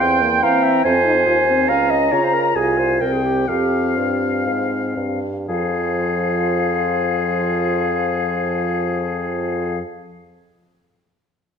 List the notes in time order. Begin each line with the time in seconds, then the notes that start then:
Already playing: C6
0.00 E2 C4 G5
0.21 A#3
0.42 E3 C4 F5 A#5
0.63 E5
0.84 F2 C4 C5 G#5
1.05 D#4
1.26 D#2 F4 G#5
1.48 C4
1.68 C#2 C#4 F5 G#5 A#5
1.91 D#5
2.12 C#3 F4 C#5 A#5
2.24 C5
2.34 A#4
2.56 C2 F4 G#4 G#5
2.79 C5
3.01 C2 C4 A#4 G5
3.13 G#4
3.25 G4
3.48 F2 C4 G4 F5
3.96 G2 F4
4.46 G#2
4.97 G2
5.48 F2 F3 F4 G#4 F5